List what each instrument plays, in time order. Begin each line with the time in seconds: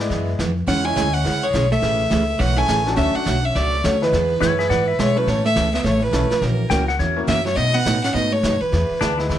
0.00 upright piano G#3 B3 E4 G#4 D5
0.10 upright bass F#2, steel-string acoustic guitar E3 B3 E4 G#4, brush sweep, kick, snare
0.39 upright bass F2, steel-string acoustic guitar E3 B3 E4 G#4, kick, snare, hi-hat pedal
0.67 upright bass E2, steel-string acoustic guitar C#3 G#3 C#4 E4 G#4, hollow-body jazz guitar C#4, fiddle F#5, brush sweep, kick, snare
0.84 upright piano G#3 C#4 E4 G#4 C#5, hollow-body jazz guitar E4, fiddle G#5
0.95 upright bass D2, steel-string acoustic guitar C#3 G#3 C#4 E4 G#4, kick, snare, hi-hat pedal
1.14 hollow-body jazz guitar C#4, fiddle F#5
1.24 upright bass C#2, steel-string acoustic guitar C#3 G#3 C#4 E4 G#4, brush sweep, kick, snare
1.43 hollow-body jazz guitar G#3, fiddle C#5
1.53 upright bass B1, steel-string acoustic guitar C#3 G#3 C#4 E4 G#4, kick, snare, hi-hat pedal
1.72 hollow-body jazz guitar A3, fiddle E5
1.81 upright bass A1, steel-string acoustic guitar C#3 E3 A3 C#4 G#4, brush sweep, kick, snare
2.10 upright bass C#2, steel-string acoustic guitar C#3 E3 A3 C#4 G#4, kick, snare, hi-hat pedal
2.38 upright bass B1, steel-string acoustic guitar C#3 E3 A3 C#4 G#4, hollow-body jazz guitar C#4, fiddle F#5, brush sweep, kick, snare
2.57 upright piano A3 C#4 E4 G#4 A4, hollow-body jazz guitar E4, fiddle G#5
2.67 upright bass A1, steel-string acoustic guitar C#3 E3 A3 C#4 G#4, kick, snare, hi-hat pedal
2.86 upright piano A3 C#4 D4 F#4 A4, snare
2.96 upright bass D2, steel-string acoustic guitar D3 F#3 A3 C#4 F#4, hollow-body jazz guitar C#4, fiddle E5, brush sweep, kick, snare
3.15 hollow-body jazz guitar D4, fiddle F#5, muted upright bass stroke
3.25 upright bass B1, steel-string acoustic guitar D3 F#3 A3 C#4 F#4, kick, snare, hi-hat pedal
3.45 hollow-body jazz guitar C#4, fiddle E5
3.55 upright bass C#2, steel-string acoustic guitar D3 F#3 A3 C#4 F#4, hollow-body jazz guitar A3, fiddle D5, brush sweep, kick, snare
3.84 upright bass D2, steel-string acoustic guitar D3 F#3 A3 C#4 F#4, hollow-body jazz guitar A3, fiddle C#5, kick, snare, hi-hat pedal
4.01 hollow-body jazz guitar E3, upright piano G#3 B3 E4 G#4 B4, fiddle B4, snare
4.12 upright bass E2, steel-string acoustic guitar E3 B3 E4 G#4, brush sweep, kick, snare
4.41 upright bass F#2, steel-string acoustic guitar E3 B3 E4 G#4, electric slide guitar E4 C#5, kick, snare, hi-hat pedal
4.59 electric slide guitar G#4 E5, snare
4.69 upright bass G#2, steel-string acoustic guitar E3 B3 E4 G#4, electric slide guitar D5 F#5, brush sweep, kick, snare
4.88 electric slide guitar E5
4.99 upright bass B2, steel-string acoustic guitar E3 B3 E4 G#4, hollow-body jazz guitar G#3, fiddle C#5, kick, snare, hi-hat pedal
5.16 hollow-body jazz guitar F#3, upright piano A3 C#4 E4 A4 C#5, fiddle B4
5.27 upright bass A2, steel-string acoustic guitar C#3 E3 A3 C#4 A4, hollow-body jazz guitar A3, fiddle C#5, brush sweep, kick, snare
5.46 hollow-body jazz guitar A3, fiddle E5
5.55 upright bass C#2, steel-string acoustic guitar C#3 E3 A3 C#4 A4, kick, snare, hi-hat pedal
5.74 hollow-body jazz guitar B3, fiddle E5, snare
5.84 upright bass A1, steel-string acoustic guitar C#3 E3 A3 C#4 A4, hollow-body jazz guitar A3, fiddle C#5, brush sweep, kick, snare
6.01 hollow-body jazz guitar E3, fiddle B4
6.13 upright bass B1, steel-string acoustic guitar C#3 E3 A3 C#4 A4, upright piano A3 C#4 E4 A4 C#5, kick, snare, hi-hat pedal
6.30 hollow-body jazz guitar F3, fiddle B4, snare
6.41 upright bass A#1, hollow-body jazz guitar E3, steel-string acoustic guitar E3 A#3 C#4 F#4 A#4, fiddle A#4, brush sweep, kick, snare
6.70 upright bass C#2, steel-string acoustic guitar E3 A#3 C#4 F#4 A#4, upright piano A#3 C#4 E4 F#4 A#4, electric slide guitar G5, kick, snare, hi-hat pedal
6.88 electric slide guitar F#5, snare
6.99 upright bass E2, steel-string acoustic guitar E3 A#3 C#4 F#4 A#4, electric slide guitar C#5, brush sweep, kick, snare
7.16 upright piano A#3 C#4 E4 F#4 A#4
7.28 upright bass F#2, steel-string acoustic guitar E3 A#3 C#4 F#4 A#4, hollow-body jazz guitar A#3, fiddle E5, kick, snare, hi-hat pedal
7.45 hollow-body jazz guitar F#3, fiddle C#5, snare
7.56 steel-string acoustic guitar B2 F#3 A3 D#4 F#4, upright bass B2, hollow-body jazz guitar B3, fiddle D#5, brush sweep, kick, snare
7.74 hollow-body jazz guitar B3, fiddle F#5
7.85 upright bass A2, steel-string acoustic guitar B2 F#3 A3 D#4 F#4, kick, snare, hi-hat pedal
8.03 hollow-body jazz guitar C#4, fiddle F#5, snare
8.14 upright bass G#2, steel-string acoustic guitar B2 F#3 A3 D#4 F#4, hollow-body jazz guitar B3, fiddle D#5, brush sweep, kick, snare
8.33 hollow-body jazz guitar A3, fiddle C#5
8.43 upright bass F#2, steel-string acoustic guitar B2 F#3 A3 D#4 F#4, kick, snare, hi-hat pedal
8.61 hollow-body jazz guitar E3, fiddle B4, muted upright bass stroke
8.72 upright bass E2, steel-string acoustic guitar E3 B3 E4 G#4, brush sweep, kick, snare
8.90 muted upright bass stroke
9.00 upright bass D2, steel-string acoustic guitar E3 B3 E4 G#4, electric slide guitar D4, kick, snare, hi-hat pedal
9.18 upright piano G#3 B3 E4 G#4 B4, electric slide guitar E4, snare
9.29 upright bass C#2, steel-string acoustic guitar E3 B3 E4 G#4, electric slide guitar E4, brush sweep, kick, snare